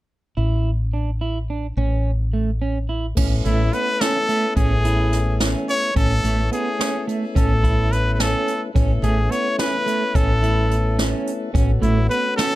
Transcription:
0.37 A1 E4
0.93 D4
1.21 E4
1.50 D4
1.77 A1 C#4
2.33 A3
2.62 C#4
2.89 E4
3.15 A1 A3 B3 C#4 E4, kick, crash
3.45 A1 A3 E4, closed hi-hat
3.73 B3 B4, closed hi-hat
4.01 C#4 A4, snare, closed hi-hat
4.29 A3, closed hi-hat
4.56 A1 C#4 G#4, kick, closed hi-hat
4.85 E4, closed hi-hat
5.13 snare, closed hi-hat
5.40 C#4, snare, closed hi-hat
5.69 C#5, closed hi-hat
5.94 A1 A3 B3 C#4 E4 A4, kick, closed hi-hat
6.24 A1 A3, closed hi-hat
6.52 B3 G#4, closed hi-hat
6.79 C#4, snare, closed hi-hat
7.07 A3, closed hi-hat
7.35 A1 C#4 A4, kick, closed hi-hat
7.63 E4, kick, closed hi-hat
7.92 B4, closed hi-hat
8.13 B4
8.20 C#4 A4, snare, closed hi-hat
8.48 closed hi-hat
8.74 A1 A3 B3 C#4, kick, closed hi-hat
8.78 E4
9.02 A1 A3 G#4, closed hi-hat
9.31 B3 C#5, closed hi-hat
9.59 C#4 B4, snare, closed hi-hat
9.86 A3, closed hi-hat
10.15 A1 C#4 A4, kick, closed hi-hat
10.42 E4, closed hi-hat
10.71 closed hi-hat
10.99 C#4, snare, closed hi-hat
11.27 closed hi-hat
11.53 A1 A3 B3 C#4 F#4, kick, closed hi-hat
11.82 A1 A3 E4, closed hi-hat
12.10 B3 B4, closed hi-hat
12.36 C#4 A4, snare, closed hi-hat

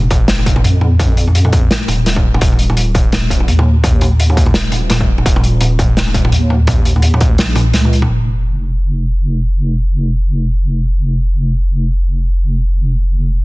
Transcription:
Already playing: F1
0.11 kick, closed hi-hat, mid tom
0.28 snare, closed hi-hat
0.39 mid tom
0.46 kick, closed hi-hat
0.56 mid tom
0.64 F2, closed hi-hat
0.81 mid tom
1.00 kick, closed hi-hat, mid tom
1.17 closed hi-hat
1.28 mid tom
1.35 closed hi-hat
1.45 mid tom
1.53 kick, closed hi-hat
1.71 snare, closed hi-hat, mid tom
1.88 D#1, closed hi-hat, mid tom
2.06 snare, closed hi-hat
2.16 kick, mid tom
2.34 mid tom
2.41 D#1, kick, closed hi-hat
2.53 mid tom
2.59 closed hi-hat
2.70 mid tom
2.77 closed hi-hat
2.95 kick, closed hi-hat, mid tom
3.12 snare, closed hi-hat, mid tom
3.30 kick, closed hi-hat
3.40 mid tom
3.48 D#2, closed hi-hat
3.59 mid tom
3.84 kick, closed hi-hat, mid tom
4.01 closed hi-hat, mid tom
4.20 closed hi-hat
4.30 mid tom
4.37 kick, closed hi-hat
4.46 mid tom
4.54 D#1, snare, closed hi-hat
4.72 closed hi-hat, mid tom
4.90 snare, closed hi-hat, mid tom
5.01 kick
5.18 mid tom
5.26 D#1, kick, closed hi-hat
5.36 mid tom
5.44 closed hi-hat
5.61 closed hi-hat, mid tom
5.79 kick, closed hi-hat, mid tom
5.97 snare, closed hi-hat
6.07 mid tom
6.14 kick, closed hi-hat
6.25 mid tom
6.32 D#2, closed hi-hat
6.50 mid tom
6.67 kick, closed hi-hat, mid tom
6.85 closed hi-hat
6.96 mid tom
7.02 closed hi-hat
7.14 mid tom
7.21 kick, closed hi-hat
7.38 A#1, snare, closed hi-hat, mid tom
7.56 closed hi-hat, mid tom
7.74 C#2, snare, closed hi-hat
7.85 mid tom
7.93 closed hi-hat
8.02 mid tom
8.10 F1

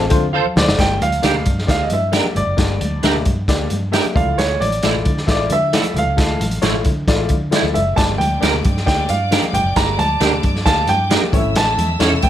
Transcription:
0.10 D3 A3 C4 D4 F4 C5, kick, closed hi-hat, high conga
0.33 F4 A4 C5 F5
0.45 high conga
0.56 D2 E4 C5 D5, snare, muted conga, high conga, low conga
0.68 F#1, snare
0.77 G1 G2 A#3 D4 G4 D5 G5, kick, snare, closed hi-hat
1.01 D2 F5, closed hi-hat, high conga
1.12 closed hi-hat
1.22 D2 A#3 D4 G4 A#4 D5, snare, closed hi-hat
1.34 low conga
1.46 G2, kick, closed hi-hat, muted conga, high conga, low conga
1.59 snare
1.67 D2 A#3 D4 G4 D5 F5, kick, snare, closed hi-hat, muted conga
1.83 D#5
1.90 G2 E5, closed hi-hat, muted conga, high conga
2.12 A#3 D4 G4 A#4 D5, snare, closed hi-hat, muted conga
2.24 high conga
2.36 G1 D5, closed hi-hat, high conga, low conga
2.47 F#1
2.57 G1 G2 A#3 D4 G4 D5, kick, snare, closed hi-hat, muted conga
2.81 D2, closed hi-hat, muted conga, high conga
3.03 D2 A#3 D4 G4 A#4 E5, snare, closed hi-hat
3.15 low conga
3.25 G2, kick, closed hi-hat, high conga, low conga
3.48 D2 A#3 D4 G4 D5, kick, snare, closed hi-hat, muted conga
3.70 G2, closed hi-hat, high conga
3.92 A#3 D4 G4 A#4 E5, snare, closed hi-hat, muted conga
4.04 closed hi-hat, high conga
4.15 D2 D3 A3 E4 F4 D5 F5, kick, closed hi-hat, high conga, low conga
4.27 C#2
4.37 D2 C#5, snare, closed hi-hat, muted conga
4.60 A1 D5, closed hi-hat, high conga
4.72 closed hi-hat
4.83 A1 F3 A3 E4 F4 D5, snare, closed hi-hat, muted conga
4.94 low conga
5.05 D3, kick, closed hi-hat, muted conga, high conga, low conga
5.18 snare
5.27 A1 A3 E4 F4 D5 E5, kick, snare, closed hi-hat, muted conga
5.50 D3 E5, closed hi-hat, high conga
5.72 F3 A3 E4 F4 D5, snare, closed hi-hat, muted conga
5.83 closed hi-hat, high conga
5.94 D2 D3 F5, closed hi-hat, muted conga, high conga, low conga
6.06 C#2
6.16 D2 A3 E4 F4 A4, kick, snare, closed hi-hat, muted conga
6.39 A1, closed hi-hat, muted conga, high conga
6.51 closed hi-hat
6.61 A1 F3 A3 E4 F4 C#5, snare, closed hi-hat
6.72 low conga
6.84 D3, kick, closed hi-hat, high conga, low conga
7.07 A1 A3 E4 F4 D5, kick, snare, closed hi-hat, muted conga
7.29 D3, kick, closed hi-hat, muted conga, high conga
7.51 F3 A3 E4 F4 D5, snare, closed hi-hat
7.63 D2, high conga
7.74 F#1 E5, closed hi-hat, muted conga, high conga, low conga
7.96 G1 G2 A#3 D4 G4 D5 A5 D6, kick, snare, closed hi-hat
8.18 D2 G5, closed hi-hat, muted conga, high conga
8.40 D2 A#3 D4 G4 A#4 D5, snare, closed hi-hat, muted conga
8.52 low conga
8.64 G2, kick, closed hi-hat, muted conga, high conga, low conga
8.77 snare
8.86 D2 A#3 D4 G4 D5 G5, kick, snare, closed hi-hat, muted conga
9.09 G2 F5, closed hi-hat, high conga
9.31 A#3 D4 G4 A#4, snare, closed hi-hat
9.42 closed hi-hat, high conga
9.53 G1 G5, closed hi-hat, muted conga, high conga, low conga
9.64 F#1
9.76 G1 G2 A#3 D4 G4 D5 A#5, kick, snare, closed hi-hat
9.98 D2 A5, closed hi-hat, high conga
10.20 D2 A#3 D4 G4 A#4 D5, snare, closed hi-hat
10.32 low conga
10.43 G2, kick, closed hi-hat, muted conga, high conga, low conga
10.56 snare
10.65 D2 A#3 D4 G4 F5 A5, kick, snare, closed hi-hat
10.87 G2 G5, closed hi-hat, high conga
11.10 A#3 D4 G4 A#4 D5, snare, closed hi-hat, muted conga
11.22 high conga
11.32 A1 A2 A3 C#4 E4 C#5 E5 E6, kick, closed hi-hat, muted conga, high conga, low conga
11.45 G#1
11.55 A1 A5, snare, closed hi-hat
11.77 E2, closed hi-hat, muted conga, high conga
11.99 E2 A3 C#4 E4 A4 C#5, snare, closed hi-hat, muted conga
12.12 low conga
12.22 A2 G5, kick, closed hi-hat, high conga, low conga

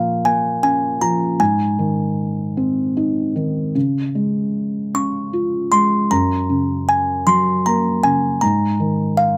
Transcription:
Already playing: A#2 F3 F5
0.25 A#3 G#5
0.63 C#4 G#5
1.01 F3 A#5
1.40 G#2 G#5
1.79 D#3
2.57 C4
2.97 D#4
3.36 D#3
3.75 C#3
4.15 G#3
4.94 C#4 C#6
5.33 F4
5.72 G#3 C6
6.11 F#2 A#5
6.49 C#3
6.89 G#5
7.27 F#3 C6
7.66 A#3 A#5
8.03 C#3 G#5
8.41 G#2 A#5
8.80 D#3
9.17 F5

